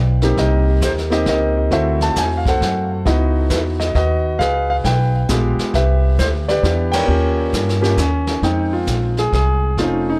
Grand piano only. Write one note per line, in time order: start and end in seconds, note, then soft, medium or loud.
0.00 0.20 B4 medium
0.00 0.20 D5 medium
0.22 0.80 A#3 medium
0.22 0.80 C4 medium
0.22 0.80 D#4 medium
0.22 0.38 G4 medium
0.39 1.09 G4 medium
0.39 1.09 A#4 medium
0.39 0.85 D#5 medium
0.84 0.91 C5 medium
1.10 1.68 A#3 medium
1.10 1.69 C4 medium
1.10 1.69 D#4 medium
1.10 1.27 G4 medium
1.10 1.27 D#5 medium
1.28 1.69 G4 medium
1.28 1.70 A#4 medium
1.28 1.74 D#5 medium
1.71 2.96 A3 medium
1.71 2.97 C4 medium
1.71 2.97 E4 medium
1.71 2.97 F#4 medium
1.71 2.42 A4 medium
1.71 2.42 C5 medium
1.71 2.03 E5 medium
2.03 2.18 A5 loud
2.18 2.37 G#5 loud
2.37 2.46 F5 medium
2.48 3.03 A4 medium
2.48 3.03 C5 medium
2.48 2.89 F#5 medium
3.05 4.31 B3 medium
3.05 4.31 D#4 medium
3.05 4.31 E4 medium
3.05 3.96 F#4 medium
3.05 3.49 B4 medium
3.05 3.48 D#5 medium
3.50 3.57 B4 medium
3.80 3.94 D#5 medium
3.96 4.38 F#4 medium
3.96 4.38 B4 medium
3.96 4.42 D#5 medium
4.39 5.11 G#4 medium
4.39 4.85 B4 medium
4.39 4.67 F5 loud
4.70 4.75 F5 medium
4.85 5.56 B4 medium
4.85 5.27 G5 medium
5.29 5.74 G#3 medium
5.29 5.74 B3 medium
5.29 5.75 F4 medium
5.29 5.74 G4 medium
5.75 6.45 G4 medium
5.75 6.45 B4 medium
5.75 6.21 E5 medium
6.19 6.26 C5 medium
6.48 6.63 G4 medium
6.48 7.06 B4 medium
6.48 6.95 D5 medium
6.63 7.08 B3 medium
6.63 7.08 D4 medium
6.63 7.09 E4 medium
6.63 7.07 G4 medium
6.92 7.50 A#4 medium
6.92 7.50 C#5 medium
6.92 7.34 G5 loud
7.07 7.76 A#3 medium
7.07 7.77 C#4 medium
7.07 7.77 F4 medium
7.07 7.77 G4 medium
7.81 7.96 A#3 medium
7.81 7.96 C#4 medium
7.81 7.96 F4 medium
7.81 7.97 G4 medium
7.98 8.40 C#4 medium
8.43 9.69 G#3 medium
8.43 9.69 C4 medium
8.43 8.73 D#4 medium
8.43 9.69 G5 medium
8.73 9.19 F4 medium
9.19 9.33 G#4 medium
9.34 9.80 G#4 medium
9.79 10.20 A3 medium
9.79 10.20 C4 soft
9.79 10.20 C#4 medium
9.79 10.08 D#4 medium
9.79 10.06 F4 medium
10.10 10.20 D#4 medium